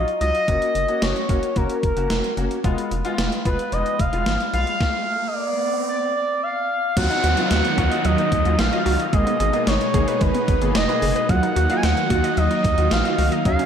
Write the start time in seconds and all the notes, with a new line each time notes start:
Already playing: D#5
0.08 closed hi-hat
0.21 C#2 F#3 D#4 F4 D#5, closed hi-hat
0.35 closed hi-hat
0.48 F#1 A#3 C#4 F#4, kick, closed hi-hat
0.62 closed hi-hat
0.75 F#1, closed hi-hat
0.88 A#3 C#4 F#4, closed hi-hat
1.02 F#1 C#5, snare, closed hi-hat
1.16 closed hi-hat
1.29 F#1 A#3 C#4 F#4, kick, closed hi-hat
1.43 closed hi-hat
1.56 F#1 A#3 C#4 F#4 A#4, kick, closed hi-hat
1.70 closed hi-hat
1.83 F#1 A#4, kick, closed hi-hat
1.97 F#1 A#3 C#4 F#4, closed hi-hat
2.10 F1, snare, closed hi-hat
2.24 closed hi-hat
2.37 F#1 A#3 C#4 F#4, closed hi-hat
2.51 closed hi-hat
2.64 F1 G#3 B3 F4, kick, closed hi-hat, riser
2.78 closed hi-hat
2.91 F1, closed hi-hat
3.05 G#3 B3 F4, closed hi-hat
3.18 F1, snare, closed hi-hat
3.32 closed hi-hat
3.45 F1 G#3 B3 F4 B4, kick, closed hi-hat
3.59 closed hi-hat
3.72 F1 G#3 B3 D#4 D#5, closed hi-hat
3.86 closed hi-hat
3.99 F1 F5, kick, closed hi-hat
4.13 F1 G#3 B3 F4, closed hi-hat
4.26 G#1, snare, closed hi-hat
4.40 closed hi-hat
4.53 B1 G#3 B3 F4 F5, closed hi-hat
4.67 closed hi-hat
4.81 kick, snare
5.28 D#5
5.35 D5
5.89 D5
6.16 D5
6.43 F5
6.97 D#2 D#3 F#3 D#4 F4 F#5, kick, closed hi-hat, crash, downlifter
7.10 D#4, closed hi-hat
7.24 D#2 F#4, closed hi-hat
7.37 F#3 D#4 F4 F5, closed hi-hat
7.51 D#2 F#5, snare, closed hi-hat
7.65 closed hi-hat
7.78 D#2 F#3 D#4 F4 F#4, kick, closed hi-hat
7.91 D#5, closed hi-hat
8.05 D#2 F#3 D#5, closed hi-hat
8.18 D#4, closed hi-hat
8.32 D#2, kick, closed hi-hat
8.45 D#2 F#3 D#4 F4, closed hi-hat
8.59 A#1 F5, snare, closed hi-hat
8.72 F#3 D#4 F4 D#5, closed hi-hat
8.86 C#2 F#4, open hi-hat
8.99 D#5, closed hi-hat
9.13 G#1 B2 G#3 A#3 B3 D#4 G#4 D#5, kick, closed hi-hat
9.27 B3, closed hi-hat
9.40 G#1 G#4, closed hi-hat
9.53 A#3 B3 G#4 D#5, closed hi-hat
9.67 G#1 C#5, snare, closed hi-hat
9.81 closed hi-hat
9.94 G#1 A#3 B3 G#4, kick, closed hi-hat
10.08 B4, closed hi-hat
10.21 G#1 G#3 B4, kick, closed hi-hat
10.35 B3, closed hi-hat
10.48 G#1, kick, closed hi-hat
10.62 G#1 A#3 B3 G#4, closed hi-hat
10.75 F1 D#5, snare, closed hi-hat
10.89 A#3 B3 G#4 B4, closed hi-hat
11.02 F#1 G#4, open hi-hat
11.16 B4, closed hi-hat
11.29 D#2 D#3 F#3 A#3 D#4 F4 F#4 F#5, kick, closed hi-hat
11.43 D#4, closed hi-hat
11.56 D#2 F#4, closed hi-hat
11.70 D#4 F4 F#4 F5, closed hi-hat
11.76 G#5
11.83 D#2 F#5, snare, closed hi-hat
11.97 closed hi-hat
12.10 D#2 D#4 F4 F#4, kick, closed hi-hat
12.24 D#5, closed hi-hat
12.37 D#2 F#3 D#5, closed hi-hat
12.51 D#4, closed hi-hat
12.64 D#2, kick, closed hi-hat
12.78 D#2 D#4 F4 F#4, closed hi-hat
12.91 A#1 F5, snare, closed hi-hat
13.05 D#4 F4 F#4 D#5, closed hi-hat
13.18 C#2 F#4, open hi-hat
13.32 D#5, closed hi-hat
13.45 D#2 C#3 F#3 A#3 C#4 D#4 F#4 F5, kick, closed hi-hat
13.59 C#4, closed hi-hat